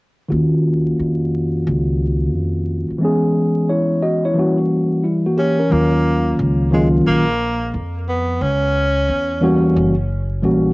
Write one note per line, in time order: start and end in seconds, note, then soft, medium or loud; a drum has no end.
0.29 0.96 D#2 medium
0.29 2.96 D#3 medium
0.29 2.98 A#3 medium
0.29 2.97 F#4 medium
0.33 2.98 C#4 medium
0.33 2.99 F4 medium
0.99 1.64 F2 medium
1.67 2.34 C#2 medium
2.34 2.87 F2 medium
2.90 muted upright bass stroke soft
2.98 4.32 E3 medium
2.98 4.33 G#3 medium
2.98 4.34 B3 medium
3.03 4.35 C#4 medium
3.03 3.69 G#4 medium
3.69 4.02 E4 soft
3.69 4.01 C#5 medium
4.02 4.24 F#4 medium
4.02 4.24 D#5 medium
4.25 4.57 E4 soft
4.25 4.57 C#5 medium
4.34 5.67 E3 medium
4.34 5.02 G3 medium
4.34 5.03 A#3 medium
4.38 5.03 C#4 medium
4.38 5.04 F#4 medium
5.04 5.25 G3 soft
5.04 5.25 E4 soft
5.26 5.36 A#3 medium
5.26 5.37 F#4 medium
5.37 5.59 A#3 soft
5.37 5.74 C#4 medium
5.37 5.59 G4 medium
5.59 5.70 C#4 soft
5.59 5.92 A#4 medium
5.69 6.36 D#2 medium
5.69 6.67 D#3 medium
5.69 6.67 F#3 soft
5.69 6.68 A#3 soft
5.69 6.39 A#3 medium
5.69 6.68 C#4 medium
5.69 6.68 F4 medium
6.39 7.03 C#2 medium
6.71 7.23 D#3 medium
6.71 7.23 F#3 medium
6.71 6.89 G#3 medium
6.71 7.24 A#3 medium
6.71 7.24 C#4 medium
6.71 7.24 F4 medium
7.06 7.70 A#1 medium
7.06 7.70 A#3 loud
7.74 8.38 F2 medium
8.09 8.44 B3 medium
8.41 9.05 C#2 medium
8.41 9.77 C#4 loud
9.09 9.78 E2 medium
9.41 9.93 E3 medium
9.41 9.93 G3 medium
9.41 9.94 A#3 medium
9.41 9.94 C#4 medium
9.41 9.94 F#4 medium
9.76 10.40 F#1 medium
10.42 10.73 A#1 medium
10.42 10.70 E3 medium
10.42 10.70 G3 medium
10.42 10.70 A#3 medium
10.42 10.71 C#4 medium
10.42 10.71 F#4 medium